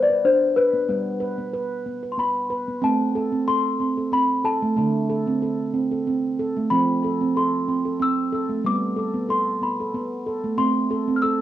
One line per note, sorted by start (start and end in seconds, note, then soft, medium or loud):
0.00 0.85 G3 medium
0.00 0.24 D5 medium
0.10 0.24 B4 medium
0.25 0.56 D4 medium
0.25 0.58 C5 medium
0.56 2.14 B4 medium
0.56 0.74 B4 medium
0.73 0.87 B3 medium
0.89 2.79 G3 medium
0.89 1.21 B3 medium
1.20 1.38 B4 medium
1.38 1.53 B3 medium
1.54 1.86 B4 medium
1.86 2.03 B3 medium
2.03 2.18 B4 medium
2.12 2.18 C6 medium
2.18 2.50 B3 medium
2.18 2.85 B5 medium
2.50 2.68 B4 medium
2.68 2.83 B3 medium
2.82 4.61 A3 medium
2.82 3.15 C4 medium
2.82 3.50 A5 medium
3.15 3.33 A4 medium
3.32 3.47 C4 medium
3.48 3.80 A4 medium
3.48 4.14 C6 loud
3.80 3.98 C4 medium
3.97 4.12 A4 medium
4.12 4.44 C4 medium
4.12 4.46 B5 medium
4.44 4.62 A4 medium
4.44 5.38 A5 medium
4.62 4.75 A3 medium
4.76 6.67 D3 medium
4.76 5.09 A3 medium
5.10 5.27 A4 medium
5.27 5.42 C4 medium
5.42 5.74 A4 medium
5.74 5.91 C4 medium
5.91 6.06 A4 medium
6.07 6.39 C4 medium
6.39 6.56 A4 medium
6.57 6.71 A3 medium
6.70 8.61 F3 medium
6.70 7.04 C4 medium
6.70 7.37 B5 medium
7.04 7.21 A4 medium
7.21 7.36 C4 medium
7.36 7.68 A4 medium
7.36 8.03 C6 medium
7.68 7.85 C4 medium
7.85 8.00 A4 medium
8.00 8.32 C4 medium
8.00 8.68 E6 medium
8.32 8.50 A4 medium
8.49 8.64 A3 medium
8.64 10.54 G3 medium
8.64 8.97 B3 medium
8.64 9.32 D6 medium
8.96 9.14 A4 medium
9.14 9.29 B3 medium
9.29 9.61 A4 medium
9.29 9.63 C6 medium
9.62 9.79 B3 medium
9.62 10.23 B5 medium
9.80 9.94 A4 medium
9.94 10.26 B3 medium
10.26 10.44 A4 medium
10.44 10.57 A3 medium
10.58 11.41 A3 medium
10.58 10.90 C4 medium
10.58 11.18 C6 medium
10.91 11.08 A4 medium
11.08 11.23 C4 medium
11.16 11.23 F6 medium
11.22 11.41 A4 medium
11.22 11.41 E6 medium